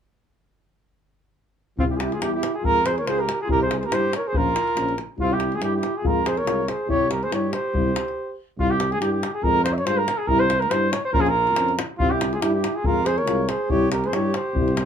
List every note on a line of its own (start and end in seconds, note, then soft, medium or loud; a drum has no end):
1.78 2.22 C2 medium
1.78 1.95 G3 soft
1.78 1.85 C4 medium
1.78 1.96 E4 medium
1.78 1.85 F4 loud
1.78 davul low loud
1.91 1.98 E4 medium
1.91 1.98 G4 medium
1.96 2.02 F4 medium
1.96 2.02 G#4 medium
1.96 davul high medium
2.01 2.15 E4 medium
2.01 2.14 G4 medium
2.12 2.25 F4 medium
2.12 2.23 G#4 medium
2.12 davul high soft
2.20 2.44 E2 medium
2.20 2.37 G3 soft
2.20 2.37 E4 medium
2.20 2.33 G4 medium
2.20 davul high medium
2.24 2.34 E4 medium
2.34 2.54 E4 medium
2.34 2.53 G4 medium
2.43 davul high medium
2.55 2.66 F4 medium
2.55 2.67 G#4 loud
2.62 3.07 F2 medium
2.62 2.80 G#3 medium
2.62 2.79 F4 medium
2.62 2.88 A#4 loud
2.62 davul low medium
2.66 2.90 F4 medium
2.86 2.99 G#4 medium
2.86 2.97 C5 medium
2.86 davul high medium
2.98 3.11 A#4 medium
2.98 3.08 C#5 medium
2.98 davul high soft
3.05 3.29 C#2 medium
3.05 3.23 G#3 soft
3.05 3.23 F4 medium
3.05 3.21 C5 medium
3.05 davul high medium
3.10 3.23 G#4 medium
3.19 3.41 G4 medium
3.19 3.40 A#4 medium
3.29 davul high medium
3.41 3.50 F4 medium
3.41 3.49 G#4 medium
3.48 3.92 C2 medium
3.48 3.65 G3 medium
3.48 3.65 E4 medium
3.48 3.61 A#4 loud
3.48 davul low medium
3.52 3.61 G4 medium
3.63 3.79 G#4 medium
3.63 3.79 C5 medium
3.71 davul high medium
3.79 3.87 G#4 soft
3.79 3.87 C5 medium
3.79 davul high soft
3.85 3.97 G4 medium
3.85 3.95 A#4 loud
3.91 4.14 G2 medium
3.91 4.08 G3 medium
3.91 4.08 E4 medium
3.91 4.13 C5 medium
3.91 davul high medium
3.97 4.15 G4 medium
4.13 4.29 C#5 medium
4.13 davul high medium
4.18 4.29 A#4 medium
4.27 4.39 G#4 medium
4.27 4.38 C5 medium
4.33 4.56 A#1 medium
4.33 4.50 F3 medium
4.33 4.51 C#4 medium
4.33 davul low medium
4.37 4.99 F4 loud
4.37 4.99 A#4 loud
4.56 davul high medium
4.68 davul high soft
4.75 4.99 A#1 medium
4.75 4.93 F3 soft
4.75 4.94 C#4 medium
4.75 davul high medium
4.89 davul high soft
4.98 davul high soft
5.18 5.62 C2 medium
5.18 5.36 G3 medium
5.18 5.35 E4 medium
5.18 5.35 F4 loud
5.18 davul low medium
5.22 5.34 C4 medium
5.32 5.55 E4 medium
5.32 5.57 G4 medium
5.40 davul high medium
5.52 5.61 F4 medium
5.52 5.63 G#4 medium
5.52 davul high soft
5.60 5.84 G2 medium
5.60 5.78 G3 soft
5.60 5.78 E4 medium
5.60 5.72 E4 medium
5.60 5.73 G4 medium
5.60 davul high medium
5.74 5.96 E4 medium
5.74 5.99 G4 medium
5.83 davul high medium
5.95 6.05 F4 medium
5.95 6.08 G#4 medium
6.03 6.48 F2 medium
6.03 6.21 G#3 medium
6.03 6.21 F4 medium
6.03 6.25 F4 medium
6.03 6.26 A#4 loud
6.03 davul low loud
6.26 6.39 G#4 medium
6.26 6.40 C5 medium
6.26 davul high medium
6.37 6.71 A#4 medium
6.37 6.70 C#5 medium
6.37 davul high soft
6.45 6.70 C2 medium
6.45 6.63 G#3 soft
6.45 6.64 F4 medium
6.45 davul high medium
6.68 6.91 G#4 medium
6.68 6.91 C5 medium
6.68 davul high medium
6.87 7.33 C2 medium
6.87 7.04 G3 medium
6.87 7.05 E4 medium
6.87 7.10 G4 medium
6.87 7.10 C#5 loud
6.87 davul low medium
7.10 7.25 G4 medium
7.10 7.25 A#4 medium
7.10 davul high medium
7.23 7.32 G#4 medium
7.23 7.32 C5 medium
7.23 davul high soft
7.31 7.55 G2 medium
7.31 7.48 G3 medium
7.31 7.48 E4 medium
7.31 7.56 G4 medium
7.31 7.55 C#5 medium
7.31 davul high medium
7.53 8.39 G4 medium
7.53 8.38 C5 medium
7.53 davul high medium
7.73 7.97 C2 medium
7.73 7.92 G3 medium
7.73 7.91 E4 medium
7.73 davul low medium
7.96 davul high medium
8.08 davul high soft
8.58 9.02 C2 medium
8.58 8.76 G3 medium
8.58 8.76 E4 medium
8.58 8.72 F4 loud
8.58 davul low medium
8.70 8.93 G4 medium
8.80 davul high medium
8.92 9.00 G#4 medium
8.92 davul high soft
9.01 9.24 G2 medium
9.01 9.19 G3 soft
9.01 9.19 E4 medium
9.01 9.12 G4 medium
9.01 davul high medium
9.13 9.33 G4 medium
9.23 davul high medium
9.34 9.45 G#4 medium
9.43 9.87 F2 medium
9.43 9.61 G#3 medium
9.43 9.61 F4 medium
9.43 9.64 A#4 loud
9.43 davul low medium
9.64 9.75 C5 medium
9.64 davul high medium
9.73 9.79 E5 medium
9.77 9.87 C#5 medium
9.77 davul high soft
9.85 10.09 G2 medium
9.85 10.03 G#3 medium
9.85 10.04 F4 medium
9.85 9.99 C5 loud
9.85 davul high medium
9.97 10.19 A#4 loud
10.08 davul high medium
10.18 10.29 G#4 medium
10.27 10.72 C2 medium
10.27 10.46 G3 medium
10.27 10.46 E4 medium
10.27 10.41 A#4 loud
10.27 davul low medium
10.40 10.61 C5 loud
10.50 davul high medium
10.60 10.72 A#4 medium
10.60 davul high soft
10.70 10.94 G2 medium
10.70 10.88 G3 medium
10.70 10.89 E4 medium
10.70 10.93 C5 loud
10.70 davul high medium
10.92 11.04 C#5 medium
10.92 davul high medium
11.05 11.09 C5 medium
11.13 11.57 A#1 medium
11.13 11.30 F3 medium
11.13 11.31 C#4 medium
11.13 11.23 F4 loud
11.13 11.22 A#4 loud
11.13 davul low loud
11.21 11.30 F4 medium
11.21 11.30 G#4 medium
11.26 11.78 F4 medium
11.26 11.77 A#4 loud
11.26 davul high soft
11.47 davul high soft
11.56 11.79 F2 medium
11.56 11.73 F3 soft
11.56 11.73 C#4 medium
11.56 davul high medium
11.68 davul high soft
11.79 davul high medium
11.98 12.43 C2 medium
11.98 12.16 G3 medium
11.98 12.14 C4 medium
11.98 12.17 E4 medium
11.98 12.12 F4 loud
11.98 davul low loud
12.10 12.35 E4 medium
12.10 12.34 G4 medium
12.21 davul high medium
12.33 12.43 F4 medium
12.33 12.42 G#4 medium
12.33 davul high soft
12.41 12.65 G2 medium
12.41 12.59 G3 medium
12.41 12.54 E4 medium
12.41 12.59 E4 medium
12.41 12.53 G4 medium
12.41 davul high medium
12.53 12.78 E4 medium
12.53 12.77 G4 medium
12.64 davul high medium
12.75 12.85 F4 medium
12.75 12.87 G#4 medium
12.84 13.28 F2 medium
12.84 13.01 G#3 medium
12.84 13.02 F4 medium
12.84 13.07 F4 medium
12.84 13.08 A#4 loud
12.84 davul low medium
13.06 13.20 G#4 medium
13.06 13.19 C5 medium
13.06 davul high medium
13.18 13.51 A#4 medium
13.18 13.50 C#5 medium
13.18 davul high soft
13.26 13.50 C2 medium
13.26 13.43 G#3 medium
13.26 13.43 F4 medium
13.26 davul high medium
13.49 13.72 G#4 medium
13.49 13.72 C5 medium
13.49 davul high medium
13.69 14.14 C2 medium
13.69 13.86 G3 medium
13.69 13.87 E4 medium
13.69 13.91 G4 loud
13.69 13.91 C#5 loud
13.69 davul low medium
13.92 14.07 G4 medium
13.92 14.08 A#4 medium
13.92 davul high medium
14.04 14.16 G#4 medium
14.04 14.15 C5 medium
14.04 davul high soft
14.12 14.36 G2 medium
14.12 14.29 G3 medium
14.12 14.30 E4 medium
14.12 14.36 G4 medium
14.12 14.38 C#5 medium
14.12 davul high medium
14.34 14.85 G4 medium
14.34 14.85 C5 medium
14.34 davul high medium
14.54 14.85 C2 medium
14.54 14.71 G3 medium
14.54 14.72 E4 medium
14.54 davul low medium
14.68 davul high soft
14.77 davul high medium